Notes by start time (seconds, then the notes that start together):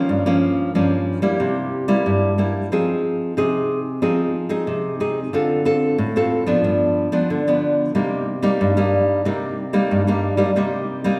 Already playing: F3 A#3 C#4
0.09 G2
0.26 F3 A#3 C#4
0.75 G2 F3 A#3 C#4
1.22 G3 A#3 E4
1.40 C3
1.88 G3 A#3 E4
2.06 G2
2.38 G3 A#3 E4
2.72 F3 C4 D#4 G#4
3.37 C3 C4 D#4 G#4
4.02 F3 C4 D#4 G#4
4.49 C4 D#4 G#4
4.67 C3
5.00 C4 D#4 G#4
5.33 D3 C4 F4 A4
5.65 C4 F4 A4
5.98 A2
6.16 C4 F4 A4
6.47 F3 B3 D4
6.64 G2
7.12 F3 B3 D4
7.30 D3
7.47 F3 B3 D4
7.95 C3 G3 A#3 D#4
8.42 G3 A#3 D#4
8.61 G2
8.77 G3 A#3 D#4
9.25 C3 G3 A#3 D#4
9.73 G3 A#3 D#4
9.91 G2
10.07 G3 A#3 D#4
10.37 G3 A#3 D#4
10.56 C3 G3 A#3 D#4
11.04 G3 A#3 D#4